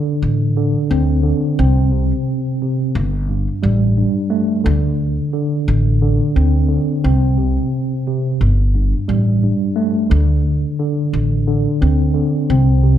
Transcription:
Already playing: tine electric piano D3
0.22 upright bass A1
0.57 tine electric piano D3
0.90 upright bass D2, tine electric piano C4
1.23 tine electric piano D3
1.59 upright bass C2, tine electric piano C4
1.92 tine electric piano C3
2.62 tine electric piano C3
2.95 upright bass G1
3.29 tine electric piano G2
3.63 upright bass A1, tine electric piano G3
3.97 tine electric piano G2
4.30 tine electric piano A3
4.64 upright bass D2, tine electric piano D3
5.33 tine electric piano D3
5.68 upright bass A1
6.02 tine electric piano D3
6.36 upright bass D2, tine electric piano C4
6.68 tine electric piano D3
7.04 upright bass C2, tine electric piano C4
7.38 tine electric piano C3
8.08 tine electric piano C3
8.41 upright bass G1
8.75 tine electric piano G2
9.08 upright bass A1, tine electric piano G3
9.43 tine electric piano G2
9.76 tine electric piano A3
10.10 upright bass D2, tine electric piano D3
10.79 tine electric piano D3
11.13 upright bass A1
11.48 tine electric piano D3
11.81 upright bass D2, tine electric piano C4
12.14 tine electric piano D3
12.50 upright bass C2, tine electric piano C4
12.83 tine electric piano C3

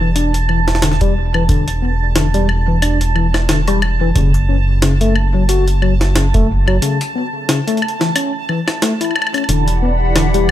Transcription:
Already playing: analog synth bass E1, synth texture A5
0.01 tine electric piano E3
0.16 tine electric piano D4, closed hi-hat
0.34 closed hi-hat
0.49 tine electric piano E3, high woodblock
0.68 snare, closed hi-hat
0.75 snare
0.82 tine electric piano D3, snare, closed hi-hat
0.92 snare
1.01 tine electric piano G3, kick, closed hi-hat
1.34 tine electric piano E3, high woodblock
1.49 tine electric piano D3, kick, closed hi-hat
1.68 closed hi-hat
1.82 tine electric piano B3
2.15 tine electric piano D3, snare, closed hi-hat
2.34 tine electric piano G3, closed hi-hat
2.49 high woodblock
2.68 tine electric piano E3
2.82 tine electric piano D4, closed hi-hat, high woodblock
3.01 closed hi-hat
3.16 tine electric piano E3, high woodblock
3.34 snare, high woodblock
3.49 tine electric piano D3, snare, closed hi-hat
3.68 tine electric piano G3, closed hi-hat, high woodblock
3.82 high woodblock
4.01 tine electric piano E3
4.15 analog synth bass F#1, tine electric piano C#3, kick, closed hi-hat
4.34 closed hi-hat
4.49 tine electric piano C#4
4.82 tine electric piano C#3, snare, closed hi-hat
5.01 tine electric piano A3, closed hi-hat
5.16 high woodblock
5.34 tine electric piano F#3
5.49 tine electric piano F#4, closed hi-hat
5.68 closed hi-hat
5.82 tine electric piano F#3, high woodblock
6.01 snare, closed hi-hat
6.15 tine electric piano C#3, snare, closed hi-hat
6.34 tine electric piano A3, kick, closed hi-hat
6.68 tine electric piano F#3, high woodblock
6.82 tine electric piano C#3, closed hi-hat
7.01 closed hi-hat
7.15 tine electric piano B3
7.49 tine electric piano C#3, snare, closed hi-hat
7.68 tine electric piano A3, closed hi-hat
7.77 closed hi-hat
7.82 high woodblock
7.88 closed hi-hat
8.01 tine electric piano E3, snare, closed hi-hat
8.16 tine electric piano C#4, closed hi-hat, high woodblock
8.49 tine electric piano E3, high woodblock
8.68 snare, closed hi-hat, high woodblock
8.82 tine electric piano A3, snare, closed hi-hat
9.01 tine electric piano E4, closed hi-hat, high woodblock
9.04 high woodblock
9.11 high woodblock
9.16 high woodblock
9.22 high woodblock
9.27 high woodblock
9.34 tine electric piano C#4, closed hi-hat, high woodblock
9.38 high woodblock
9.44 high woodblock
9.49 analog synth bass E1, tine electric piano D3, analog synth pad E3 E4 G4 D5 F#5, synth texture B5, closed hi-hat
9.68 closed hi-hat
9.82 tine electric piano B3
10.16 tine electric piano D3, snare, closed hi-hat, high woodblock
10.34 tine electric piano G3, closed hi-hat

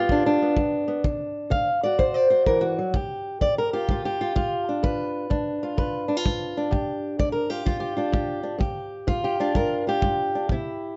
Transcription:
Already playing: steel-string acoustic guitar B3 F4 G4
0.09 steel-string acoustic guitar G2 D4, kick
0.26 steel-string acoustic guitar D4
0.42 steel-string acoustic guitar B3
0.57 steel-string acoustic guitar G2, kick
0.88 steel-string acoustic guitar B3
1.04 steel-string acoustic guitar D3, kick
1.50 steel-string acoustic guitar D3 F5, kick
1.83 steel-string acoustic guitar F#4 D5
1.99 steel-string acoustic guitar D3 C5, kick
2.14 steel-string acoustic guitar D5
2.30 steel-string acoustic guitar F#4 C5
2.46 steel-string acoustic guitar E3 A#4, kick
2.61 steel-string acoustic guitar F#4
2.79 steel-string acoustic guitar F#3
2.94 steel-string acoustic guitar G2 G4, kick
3.41 steel-string acoustic guitar G2 D5, kick
3.58 steel-string acoustic guitar A#4
3.73 steel-string acoustic guitar F4 G4
3.89 steel-string acoustic guitar G2 F4, kick
4.05 steel-string acoustic guitar G4
4.21 steel-string acoustic guitar F4
4.36 steel-string acoustic guitar G2 F4, kick
4.69 steel-string acoustic guitar D4
4.83 steel-string acoustic guitar G2 B4, kick
5.30 steel-string acoustic guitar G2 D4, kick
5.63 steel-string acoustic guitar F4
5.77 steel-string acoustic guitar G2 B4, kick
6.08 steel-string acoustic guitar D4
6.17 steel-string acoustic guitar F4
6.26 steel-string acoustic guitar G2, kick
6.57 steel-string acoustic guitar D4
6.71 steel-string acoustic guitar G2 G4, kick
7.19 steel-string acoustic guitar G2 D5, kick
7.32 steel-string acoustic guitar A#4
7.50 steel-string acoustic guitar F4 G4
7.66 steel-string acoustic guitar G2 F4, kick
7.80 steel-string acoustic guitar G4
7.97 steel-string acoustic guitar D4 F4
8.12 steel-string acoustic guitar G2 G4, kick
8.43 steel-string acoustic guitar D4
8.58 steel-string acoustic guitar G2 G4, kick
9.07 steel-string acoustic guitar G2 F4, kick
9.24 steel-string acoustic guitar G4
9.40 steel-string acoustic guitar D4 F4
9.55 steel-string acoustic guitar G2 A#4, kick
9.87 steel-string acoustic guitar F4 G4
10.02 steel-string acoustic guitar G2, kick
10.35 steel-string acoustic guitar D4
10.49 steel-string acoustic guitar C3 E4, kick

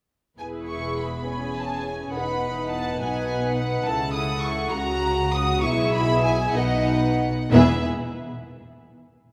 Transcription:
0.39 double bass section E1, cello section E2, viola section E4 G#4, violin section B4 G#5
0.69 violin section C#6
1.00 violin section B5
1.27 viola section C#4 G#4, violin section G#5
1.59 violin section A5
1.88 violin section G#5
2.14 double bass section E1, cello section E2, viola section D#4 B4, violin section F#5 B5
2.72 violin section A5
2.99 double bass section B1, cello section B2, viola section B4, violin section G#5
3.57 violin section F#5
3.86 double bass section C#2, cello section C#3, viola section E4 A4, violin section A5
4.15 violin section D#6
4.44 violin section C#6
4.73 double bass section C#2, cello section C#3, viola section F#4, violin section A#5
5.33 violin section D#6
5.63 double bass section B1, cello section B2, viola section E4 G#4, violin section E5 C#6
5.93 violin section B5
6.24 violin section G#5
6.54 double bass section B1, cello section B2, viola section D#4 B4, violin section D#5 F#5
7.51 double bass section E1, cello section E2, viola section B3 E4, violin section G#4 B4 E5

